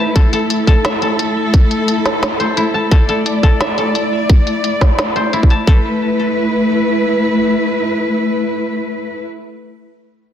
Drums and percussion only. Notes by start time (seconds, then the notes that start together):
0.16 kick, closed hi-hat
0.33 closed hi-hat
0.50 closed hi-hat
0.67 kick, closed hi-hat
0.85 snare, closed hi-hat
1.02 closed hi-hat
1.19 closed hi-hat
1.54 kick, closed hi-hat
1.71 closed hi-hat
1.88 closed hi-hat
2.06 snare, closed hi-hat
2.23 snare, closed hi-hat
2.40 closed hi-hat
2.57 closed hi-hat
2.92 kick, closed hi-hat
3.09 closed hi-hat
3.26 closed hi-hat
3.43 kick, closed hi-hat
3.61 snare, closed hi-hat
3.78 closed hi-hat
3.95 closed hi-hat
4.30 kick, closed hi-hat
4.47 closed hi-hat
4.64 closed hi-hat
4.81 kick, snare, closed hi-hat
4.99 snare, closed hi-hat
5.16 closed hi-hat
5.33 closed hi-hat
5.43 kick
5.50 closed hi-hat
5.67 kick